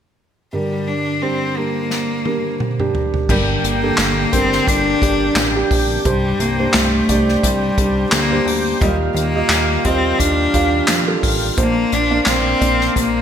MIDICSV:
0, 0, Header, 1, 6, 480
1, 0, Start_track
1, 0, Key_signature, -2, "minor"
1, 0, Tempo, 690449
1, 364, Time_signature, 4, 2, 24, 8
1, 9188, End_track
2, 0, Start_track
2, 0, Title_t, "Tonewheel organ"
2, 0, Program_c, 0, 16
2, 2287, Note_on_c, 0, 67, 56
2, 2290, Note_on_c, 0, 58, 61
2, 2290, Note_on_c, 0, 62, 64
2, 2291, Note_on_c, 0, 79, 71
2, 4189, Note_off_c, 0, 67, 0
2, 4190, Note_off_c, 0, 58, 0
2, 4220, Note_on_c, 0, 67, 59
2, 4221, Note_on_c, 0, 72, 60
2, 6101, Note_off_c, 0, 62, 0
2, 6101, Note_off_c, 0, 79, 0
2, 6114, Note_off_c, 0, 72, 0
2, 6134, Note_on_c, 0, 51, 66
2, 6134, Note_on_c, 0, 77, 70
2, 6136, Note_on_c, 0, 58, 59
2, 8024, Note_off_c, 0, 67, 0
2, 8030, Note_off_c, 0, 51, 0
2, 8032, Note_off_c, 0, 58, 0
2, 8052, Note_on_c, 0, 58, 58
2, 8056, Note_on_c, 0, 62, 65
2, 8056, Note_on_c, 0, 72, 58
2, 9188, Note_off_c, 0, 58, 0
2, 9188, Note_off_c, 0, 62, 0
2, 9188, Note_off_c, 0, 72, 0
2, 9188, Note_off_c, 0, 77, 0
2, 9188, End_track
3, 0, Start_track
3, 0, Title_t, "Felt piano"
3, 0, Program_c, 1, 0
3, 368, Note_on_c, 1, 43, 45
3, 368, Note_on_c, 1, 55, 52
3, 369, Note_on_c, 1, 50, 44
3, 369, Note_on_c, 1, 62, 48
3, 371, Note_on_c, 1, 70, 60
3, 480, Control_c, 1, 64, 127
3, 757, Note_off_c, 1, 55, 0
3, 757, Note_off_c, 1, 62, 0
3, 759, Note_off_c, 1, 70, 0
3, 849, Note_on_c, 1, 55, 57
3, 849, Note_on_c, 1, 62, 49
3, 850, Note_on_c, 1, 72, 59
3, 1043, Note_off_c, 1, 55, 0
3, 1043, Note_off_c, 1, 62, 0
3, 1043, Note_off_c, 1, 72, 0
3, 1087, Note_on_c, 1, 55, 51
3, 1088, Note_on_c, 1, 70, 61
3, 1090, Note_on_c, 1, 62, 49
3, 1477, Note_off_c, 1, 55, 0
3, 1478, Note_off_c, 1, 62, 0
3, 1478, Note_off_c, 1, 70, 0
3, 1566, Note_on_c, 1, 62, 54
3, 1568, Note_on_c, 1, 55, 58
3, 1569, Note_on_c, 1, 70, 63
3, 1855, Note_off_c, 1, 62, 0
3, 1856, Note_off_c, 1, 55, 0
3, 1857, Note_off_c, 1, 70, 0
3, 1945, Note_on_c, 1, 55, 68
3, 1946, Note_on_c, 1, 62, 64
3, 1946, Note_on_c, 1, 67, 78
3, 2222, Note_off_c, 1, 55, 0
3, 2222, Note_off_c, 1, 62, 0
3, 2222, Note_off_c, 1, 67, 0
3, 2262, Note_off_c, 1, 43, 0
3, 2262, Note_off_c, 1, 50, 0
3, 2288, Note_on_c, 1, 43, 58
3, 2288, Note_on_c, 1, 50, 64
3, 2290, Note_on_c, 1, 55, 67
3, 2290, Note_on_c, 1, 62, 66
3, 2291, Note_on_c, 1, 70, 73
3, 2297, Control_c, 1, 64, 0
3, 2433, Control_c, 1, 64, 127
3, 2577, Note_off_c, 1, 55, 0
3, 2577, Note_off_c, 1, 62, 0
3, 2578, Note_off_c, 1, 70, 0
3, 2663, Note_on_c, 1, 55, 72
3, 2664, Note_on_c, 1, 62, 67
3, 2667, Note_on_c, 1, 69, 78
3, 2941, Note_off_c, 1, 55, 0
3, 2941, Note_off_c, 1, 62, 0
3, 2943, Note_off_c, 1, 69, 0
3, 2981, Note_off_c, 1, 43, 0
3, 2981, Note_off_c, 1, 50, 0
3, 3009, Note_on_c, 1, 55, 70
3, 3011, Note_on_c, 1, 62, 66
3, 3012, Note_on_c, 1, 70, 70
3, 3399, Note_off_c, 1, 55, 0
3, 3399, Note_off_c, 1, 62, 0
3, 3400, Note_off_c, 1, 70, 0
3, 3487, Note_on_c, 1, 55, 69
3, 3488, Note_on_c, 1, 62, 65
3, 3491, Note_on_c, 1, 67, 81
3, 3776, Note_off_c, 1, 55, 0
3, 3776, Note_off_c, 1, 62, 0
3, 3778, Note_off_c, 1, 67, 0
3, 3865, Note_on_c, 1, 55, 81
3, 3865, Note_on_c, 1, 62, 72
3, 3866, Note_on_c, 1, 67, 91
3, 4142, Note_off_c, 1, 55, 0
3, 4142, Note_off_c, 1, 62, 0
3, 4142, Note_off_c, 1, 67, 0
3, 4206, Note_on_c, 1, 55, 72
3, 4207, Note_on_c, 1, 62, 62
3, 4209, Note_on_c, 1, 43, 61
3, 4211, Note_on_c, 1, 72, 76
3, 4217, Control_c, 1, 64, 0
3, 4331, Control_c, 1, 64, 127
3, 4495, Note_off_c, 1, 55, 0
3, 4496, Note_off_c, 1, 62, 0
3, 4498, Note_off_c, 1, 72, 0
3, 4582, Note_on_c, 1, 55, 72
3, 4582, Note_on_c, 1, 62, 64
3, 4584, Note_on_c, 1, 72, 73
3, 4860, Note_off_c, 1, 55, 0
3, 4860, Note_off_c, 1, 62, 0
3, 4861, Note_off_c, 1, 72, 0
3, 4901, Note_off_c, 1, 43, 0
3, 4930, Note_on_c, 1, 55, 74
3, 4931, Note_on_c, 1, 62, 65
3, 4931, Note_on_c, 1, 74, 82
3, 5318, Note_off_c, 1, 55, 0
3, 5319, Note_off_c, 1, 62, 0
3, 5319, Note_off_c, 1, 74, 0
3, 5407, Note_on_c, 1, 55, 71
3, 5410, Note_on_c, 1, 62, 65
3, 5410, Note_on_c, 1, 67, 73
3, 5695, Note_off_c, 1, 55, 0
3, 5697, Note_off_c, 1, 62, 0
3, 5697, Note_off_c, 1, 67, 0
3, 5779, Note_on_c, 1, 62, 62
3, 5780, Note_on_c, 1, 55, 72
3, 5782, Note_on_c, 1, 72, 74
3, 6058, Note_off_c, 1, 62, 0
3, 6059, Note_off_c, 1, 55, 0
3, 6060, Note_off_c, 1, 72, 0
3, 6128, Note_on_c, 1, 55, 68
3, 6129, Note_on_c, 1, 46, 61
3, 6131, Note_on_c, 1, 65, 64
3, 6132, Note_on_c, 1, 75, 79
3, 6137, Control_c, 1, 64, 0
3, 6241, Control_c, 1, 64, 127
3, 6416, Note_off_c, 1, 55, 0
3, 6417, Note_off_c, 1, 65, 0
3, 6418, Note_off_c, 1, 75, 0
3, 6503, Note_on_c, 1, 55, 69
3, 6505, Note_on_c, 1, 65, 65
3, 6505, Note_on_c, 1, 75, 79
3, 6780, Note_off_c, 1, 55, 0
3, 6781, Note_off_c, 1, 65, 0
3, 6781, Note_off_c, 1, 75, 0
3, 6820, Note_off_c, 1, 46, 0
3, 6847, Note_on_c, 1, 55, 72
3, 6849, Note_on_c, 1, 65, 66
3, 6852, Note_on_c, 1, 75, 79
3, 7236, Note_off_c, 1, 55, 0
3, 7237, Note_off_c, 1, 65, 0
3, 7239, Note_off_c, 1, 75, 0
3, 7326, Note_on_c, 1, 55, 72
3, 7326, Note_on_c, 1, 65, 63
3, 7329, Note_on_c, 1, 77, 80
3, 7614, Note_off_c, 1, 55, 0
3, 7614, Note_off_c, 1, 65, 0
3, 7616, Note_off_c, 1, 77, 0
3, 7696, Note_on_c, 1, 55, 85
3, 7699, Note_on_c, 1, 65, 75
3, 7700, Note_on_c, 1, 69, 89
3, 7976, Note_off_c, 1, 55, 0
3, 7978, Note_off_c, 1, 65, 0
3, 7978, Note_off_c, 1, 69, 0
3, 8043, Note_on_c, 1, 58, 66
3, 8046, Note_on_c, 1, 62, 65
3, 8048, Note_on_c, 1, 72, 77
3, 8056, Control_c, 1, 64, 0
3, 8161, Control_c, 1, 64, 127
3, 8332, Note_off_c, 1, 58, 0
3, 8334, Note_off_c, 1, 62, 0
3, 8335, Note_off_c, 1, 72, 0
3, 8417, Note_on_c, 1, 58, 69
3, 8418, Note_on_c, 1, 62, 65
3, 8419, Note_on_c, 1, 74, 73
3, 8696, Note_off_c, 1, 58, 0
3, 8697, Note_off_c, 1, 62, 0
3, 8697, Note_off_c, 1, 74, 0
3, 8760, Note_on_c, 1, 58, 69
3, 8762, Note_on_c, 1, 62, 65
3, 8765, Note_on_c, 1, 74, 74
3, 9152, Note_off_c, 1, 58, 0
3, 9153, Note_off_c, 1, 62, 0
3, 9155, Note_off_c, 1, 74, 0
3, 9188, End_track
4, 0, Start_track
4, 0, Title_t, "Cello"
4, 0, Program_c, 2, 42
4, 372, Note_on_c, 2, 55, 69
4, 610, Note_on_c, 2, 62, 73
4, 621, Note_off_c, 2, 55, 0
4, 849, Note_on_c, 2, 60, 76
4, 859, Note_off_c, 2, 62, 0
4, 1090, Note_on_c, 2, 58, 75
4, 1101, Note_off_c, 2, 60, 0
4, 2050, Note_off_c, 2, 58, 0
4, 2300, Note_on_c, 2, 55, 88
4, 2405, Note_off_c, 2, 55, 0
4, 2529, Note_on_c, 2, 58, 90
4, 3010, Note_on_c, 2, 60, 93
4, 3020, Note_off_c, 2, 58, 0
4, 3250, Note_on_c, 2, 62, 100
4, 3261, Note_off_c, 2, 60, 0
4, 3969, Note_off_c, 2, 62, 0
4, 4216, Note_on_c, 2, 55, 84
4, 4452, Note_on_c, 2, 58, 84
4, 4462, Note_off_c, 2, 55, 0
4, 4687, Note_on_c, 2, 57, 88
4, 4698, Note_off_c, 2, 58, 0
4, 5165, Note_on_c, 2, 55, 88
4, 5176, Note_off_c, 2, 57, 0
4, 5640, Note_off_c, 2, 55, 0
4, 5644, Note_on_c, 2, 58, 101
4, 5994, Note_off_c, 2, 58, 0
4, 6126, Note_on_c, 2, 55, 92
4, 6235, Note_off_c, 2, 55, 0
4, 6372, Note_on_c, 2, 58, 99
4, 6848, Note_on_c, 2, 60, 94
4, 6859, Note_off_c, 2, 58, 0
4, 7088, Note_on_c, 2, 62, 101
4, 7098, Note_off_c, 2, 60, 0
4, 7807, Note_off_c, 2, 62, 0
4, 8057, Note_on_c, 2, 58, 96
4, 8301, Note_on_c, 2, 62, 100
4, 8311, Note_off_c, 2, 58, 0
4, 8533, Note_off_c, 2, 62, 0
4, 8538, Note_on_c, 2, 60, 98
4, 8984, Note_off_c, 2, 60, 0
4, 9028, Note_on_c, 2, 58, 86
4, 9188, Note_off_c, 2, 58, 0
4, 9188, End_track
5, 0, Start_track
5, 0, Title_t, "Analog synth bass"
5, 0, Program_c, 3, 38
5, 2286, Note_on_c, 3, 31, 105
5, 2484, Note_off_c, 3, 31, 0
5, 2528, Note_on_c, 3, 31, 92
5, 2725, Note_off_c, 3, 31, 0
5, 2767, Note_on_c, 3, 31, 103
5, 2965, Note_off_c, 3, 31, 0
5, 3010, Note_on_c, 3, 31, 98
5, 3206, Note_off_c, 3, 31, 0
5, 3247, Note_on_c, 3, 31, 94
5, 3444, Note_off_c, 3, 31, 0
5, 3489, Note_on_c, 3, 31, 98
5, 3686, Note_off_c, 3, 31, 0
5, 3720, Note_on_c, 3, 33, 91
5, 3920, Note_off_c, 3, 33, 0
5, 3966, Note_on_c, 3, 34, 92
5, 4164, Note_off_c, 3, 34, 0
5, 4205, Note_on_c, 3, 36, 98
5, 4403, Note_off_c, 3, 36, 0
5, 4447, Note_on_c, 3, 36, 99
5, 4644, Note_off_c, 3, 36, 0
5, 4689, Note_on_c, 3, 36, 98
5, 4885, Note_off_c, 3, 36, 0
5, 4926, Note_on_c, 3, 36, 101
5, 5124, Note_off_c, 3, 36, 0
5, 5167, Note_on_c, 3, 36, 107
5, 5364, Note_off_c, 3, 36, 0
5, 5406, Note_on_c, 3, 36, 85
5, 5604, Note_off_c, 3, 36, 0
5, 5644, Note_on_c, 3, 38, 90
5, 5842, Note_off_c, 3, 38, 0
5, 5878, Note_on_c, 3, 38, 90
5, 6079, Note_off_c, 3, 38, 0
5, 6126, Note_on_c, 3, 39, 112
5, 6323, Note_off_c, 3, 39, 0
5, 6357, Note_on_c, 3, 39, 98
5, 6558, Note_off_c, 3, 39, 0
5, 6598, Note_on_c, 3, 39, 98
5, 6798, Note_off_c, 3, 39, 0
5, 6848, Note_on_c, 3, 39, 100
5, 7044, Note_off_c, 3, 39, 0
5, 7088, Note_on_c, 3, 39, 93
5, 7284, Note_off_c, 3, 39, 0
5, 7327, Note_on_c, 3, 39, 90
5, 7524, Note_off_c, 3, 39, 0
5, 7565, Note_on_c, 3, 41, 89
5, 7762, Note_off_c, 3, 41, 0
5, 7806, Note_on_c, 3, 33, 80
5, 8003, Note_off_c, 3, 33, 0
5, 8048, Note_on_c, 3, 34, 106
5, 8244, Note_off_c, 3, 34, 0
5, 8291, Note_on_c, 3, 34, 100
5, 8486, Note_off_c, 3, 34, 0
5, 8527, Note_on_c, 3, 34, 105
5, 8723, Note_off_c, 3, 34, 0
5, 8768, Note_on_c, 3, 34, 90
5, 8964, Note_off_c, 3, 34, 0
5, 9009, Note_on_c, 3, 34, 96
5, 9188, Note_off_c, 3, 34, 0
5, 9188, End_track
6, 0, Start_track
6, 0, Title_t, "Drums"
6, 1326, Note_on_c, 9, 38, 44
6, 1395, Note_off_c, 9, 38, 0
6, 1567, Note_on_c, 9, 48, 55
6, 1636, Note_off_c, 9, 48, 0
6, 1809, Note_on_c, 9, 47, 67
6, 1879, Note_off_c, 9, 47, 0
6, 1944, Note_on_c, 9, 45, 60
6, 2013, Note_off_c, 9, 45, 0
6, 2049, Note_on_c, 9, 43, 77
6, 2118, Note_off_c, 9, 43, 0
6, 2181, Note_on_c, 9, 43, 65
6, 2251, Note_off_c, 9, 43, 0
6, 2288, Note_on_c, 9, 36, 107
6, 2291, Note_on_c, 9, 49, 83
6, 2358, Note_off_c, 9, 36, 0
6, 2361, Note_off_c, 9, 49, 0
6, 2534, Note_on_c, 9, 42, 60
6, 2603, Note_off_c, 9, 42, 0
6, 2762, Note_on_c, 9, 39, 79
6, 2768, Note_on_c, 9, 38, 99
6, 2772, Note_on_c, 9, 42, 84
6, 2832, Note_off_c, 9, 39, 0
6, 2837, Note_off_c, 9, 38, 0
6, 2841, Note_off_c, 9, 42, 0
6, 3010, Note_on_c, 9, 36, 77
6, 3010, Note_on_c, 9, 42, 77
6, 3079, Note_off_c, 9, 36, 0
6, 3079, Note_off_c, 9, 42, 0
6, 3144, Note_on_c, 9, 38, 31
6, 3214, Note_off_c, 9, 38, 0
6, 3250, Note_on_c, 9, 36, 80
6, 3255, Note_on_c, 9, 42, 89
6, 3320, Note_off_c, 9, 36, 0
6, 3325, Note_off_c, 9, 42, 0
6, 3489, Note_on_c, 9, 36, 93
6, 3494, Note_on_c, 9, 42, 63
6, 3559, Note_off_c, 9, 36, 0
6, 3564, Note_off_c, 9, 42, 0
6, 3724, Note_on_c, 9, 39, 85
6, 3729, Note_on_c, 9, 38, 109
6, 3730, Note_on_c, 9, 42, 90
6, 3793, Note_off_c, 9, 39, 0
6, 3799, Note_off_c, 9, 38, 0
6, 3799, Note_off_c, 9, 42, 0
6, 3969, Note_on_c, 9, 36, 95
6, 3971, Note_on_c, 9, 46, 72
6, 4038, Note_off_c, 9, 36, 0
6, 4040, Note_off_c, 9, 46, 0
6, 4208, Note_on_c, 9, 36, 109
6, 4208, Note_on_c, 9, 42, 88
6, 4277, Note_off_c, 9, 42, 0
6, 4278, Note_off_c, 9, 36, 0
6, 4450, Note_on_c, 9, 42, 65
6, 4520, Note_off_c, 9, 42, 0
6, 4681, Note_on_c, 9, 39, 72
6, 4686, Note_on_c, 9, 38, 103
6, 4691, Note_on_c, 9, 42, 81
6, 4751, Note_off_c, 9, 39, 0
6, 4756, Note_off_c, 9, 38, 0
6, 4760, Note_off_c, 9, 42, 0
6, 4929, Note_on_c, 9, 36, 76
6, 4929, Note_on_c, 9, 42, 73
6, 4999, Note_off_c, 9, 36, 0
6, 4999, Note_off_c, 9, 42, 0
6, 5064, Note_on_c, 9, 38, 32
6, 5133, Note_off_c, 9, 38, 0
6, 5169, Note_on_c, 9, 36, 80
6, 5171, Note_on_c, 9, 42, 88
6, 5238, Note_off_c, 9, 36, 0
6, 5240, Note_off_c, 9, 42, 0
6, 5407, Note_on_c, 9, 36, 84
6, 5408, Note_on_c, 9, 42, 68
6, 5477, Note_off_c, 9, 36, 0
6, 5478, Note_off_c, 9, 42, 0
6, 5642, Note_on_c, 9, 39, 80
6, 5648, Note_on_c, 9, 38, 107
6, 5648, Note_on_c, 9, 42, 87
6, 5712, Note_off_c, 9, 39, 0
6, 5717, Note_off_c, 9, 38, 0
6, 5718, Note_off_c, 9, 42, 0
6, 5891, Note_on_c, 9, 46, 73
6, 5961, Note_off_c, 9, 46, 0
6, 6128, Note_on_c, 9, 36, 104
6, 6130, Note_on_c, 9, 42, 92
6, 6198, Note_off_c, 9, 36, 0
6, 6200, Note_off_c, 9, 42, 0
6, 6372, Note_on_c, 9, 42, 64
6, 6441, Note_off_c, 9, 42, 0
6, 6600, Note_on_c, 9, 39, 74
6, 6605, Note_on_c, 9, 38, 95
6, 6609, Note_on_c, 9, 42, 83
6, 6669, Note_off_c, 9, 39, 0
6, 6675, Note_off_c, 9, 38, 0
6, 6679, Note_off_c, 9, 42, 0
6, 6846, Note_on_c, 9, 42, 76
6, 6849, Note_on_c, 9, 36, 78
6, 6916, Note_off_c, 9, 42, 0
6, 6918, Note_off_c, 9, 36, 0
6, 7089, Note_on_c, 9, 36, 77
6, 7092, Note_on_c, 9, 42, 91
6, 7158, Note_off_c, 9, 36, 0
6, 7161, Note_off_c, 9, 42, 0
6, 7327, Note_on_c, 9, 42, 64
6, 7328, Note_on_c, 9, 36, 84
6, 7397, Note_off_c, 9, 36, 0
6, 7397, Note_off_c, 9, 42, 0
6, 7561, Note_on_c, 9, 39, 82
6, 7566, Note_on_c, 9, 38, 105
6, 7567, Note_on_c, 9, 42, 86
6, 7630, Note_off_c, 9, 39, 0
6, 7636, Note_off_c, 9, 38, 0
6, 7636, Note_off_c, 9, 42, 0
6, 7808, Note_on_c, 9, 36, 96
6, 7810, Note_on_c, 9, 46, 73
6, 7878, Note_off_c, 9, 36, 0
6, 7879, Note_off_c, 9, 46, 0
6, 8048, Note_on_c, 9, 42, 92
6, 8049, Note_on_c, 9, 36, 111
6, 8117, Note_off_c, 9, 42, 0
6, 8118, Note_off_c, 9, 36, 0
6, 8289, Note_on_c, 9, 42, 64
6, 8358, Note_off_c, 9, 42, 0
6, 8520, Note_on_c, 9, 39, 72
6, 8525, Note_on_c, 9, 38, 95
6, 8529, Note_on_c, 9, 42, 85
6, 8589, Note_off_c, 9, 39, 0
6, 8595, Note_off_c, 9, 38, 0
6, 8599, Note_off_c, 9, 42, 0
6, 8770, Note_on_c, 9, 36, 75
6, 8770, Note_on_c, 9, 42, 73
6, 8840, Note_off_c, 9, 36, 0
6, 8840, Note_off_c, 9, 42, 0
6, 8904, Note_on_c, 9, 38, 31
6, 8974, Note_off_c, 9, 38, 0
6, 9010, Note_on_c, 9, 36, 80
6, 9014, Note_on_c, 9, 42, 86
6, 9080, Note_off_c, 9, 36, 0
6, 9083, Note_off_c, 9, 42, 0
6, 9188, End_track
0, 0, End_of_file